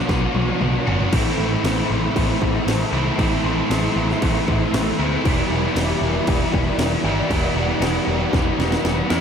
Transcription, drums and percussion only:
0.09 kick, snare
0.35 high tom
0.49 high tom
0.61 mid tom
0.87 floor tom
1.01 floor tom
1.13 kick, crash
1.65 snare, crash
2.16 kick, crash
2.42 kick
2.68 snare, crash
3.19 kick, crash
3.71 snare, crash
4.10 snare
4.22 kick, crash
4.48 kick
4.74 snare, crash
5.25 kick, crash
5.76 snare, crash
6.27 kick, crash
6.54 kick
6.79 snare, crash
7.31 kick, crash
7.82 snare, crash
8.33 kick, snare
8.60 snare
8.72 snare
8.85 snare
9.10 snare

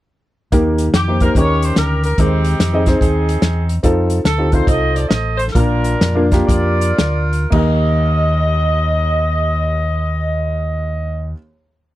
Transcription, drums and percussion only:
0.52 kick, closed hi-hat
0.78 closed hi-hat
0.94 snare, closed hi-hat
1.20 kick, closed hi-hat
1.35 kick, closed hi-hat
1.62 closed hi-hat
1.76 snare, closed hi-hat
2.04 closed hi-hat
2.18 kick, closed hi-hat
2.45 closed hi-hat
2.60 snare, closed hi-hat
2.86 kick, snare, closed hi-hat
3.01 kick, closed hi-hat
3.29 closed hi-hat
3.42 snare, closed hi-hat
3.69 closed hi-hat
3.84 kick, closed hi-hat
4.10 closed hi-hat
4.25 snare, closed hi-hat
4.52 kick, closed hi-hat
4.67 kick, closed hi-hat
4.96 closed hi-hat
5.11 snare, closed hi-hat
5.39 closed hi-hat
5.48 snare
5.55 kick, closed hi-hat
5.84 closed hi-hat
6.01 snare, closed hi-hat
6.32 kick, snare, closed hi-hat
6.49 kick, closed hi-hat
6.81 closed hi-hat
6.98 snare, closed hi-hat
7.33 closed hi-hat
7.52 kick, crash

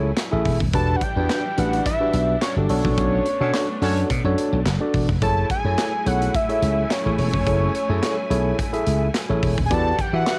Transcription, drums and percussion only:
0.17 snare, clap, closed hi-hat
0.45 kick, open hi-hat
0.61 kick
0.74 kick, closed hi-hat
1.01 kick, closed hi-hat
1.30 snare, clap, closed hi-hat
1.58 closed hi-hat
1.73 closed hi-hat
1.86 kick, closed hi-hat
2.14 closed hi-hat
2.42 snare, clap, closed hi-hat
2.69 open hi-hat
2.85 kick
2.98 kick, closed hi-hat
3.26 closed hi-hat
3.54 snare, clap, closed hi-hat
3.82 open hi-hat
3.97 closed hi-hat
4.10 kick, closed hi-hat
4.38 closed hi-hat
4.66 snare, clap, closed hi-hat
4.94 kick, open hi-hat
5.09 kick
5.22 kick, closed hi-hat
5.50 kick, closed hi-hat
5.78 snare, clap, closed hi-hat
6.06 closed hi-hat
6.22 closed hi-hat
6.34 kick, closed hi-hat
6.49 closed hi-hat
6.62 closed hi-hat
6.91 snare, clap, closed hi-hat
7.18 open hi-hat
7.33 kick
7.46 kick, closed hi-hat
7.75 closed hi-hat
8.03 snare, clap, closed hi-hat
8.31 closed hi-hat
8.59 kick, closed hi-hat
8.74 closed hi-hat
8.87 closed hi-hat
9.14 snare, clap, closed hi-hat
9.43 kick, open hi-hat
9.58 kick
9.71 kick, closed hi-hat
9.99 kick, closed hi-hat
10.27 snare, clap, closed hi-hat

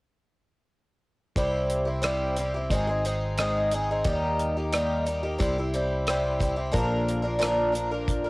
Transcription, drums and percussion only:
1.36 kick, closed hi-hat
1.70 closed hi-hat
2.03 cross-stick, closed hi-hat
2.37 closed hi-hat
2.70 kick, closed hi-hat
3.05 closed hi-hat
3.38 cross-stick, closed hi-hat
3.71 closed hi-hat
4.04 kick, closed hi-hat
4.39 closed hi-hat
4.73 cross-stick, closed hi-hat
5.07 closed hi-hat
5.40 kick, closed hi-hat
5.74 closed hi-hat
6.07 cross-stick, closed hi-hat
6.40 kick, closed hi-hat
6.74 kick, closed hi-hat
7.09 closed hi-hat
7.42 cross-stick, closed hi-hat
7.75 closed hi-hat
8.08 kick, closed hi-hat

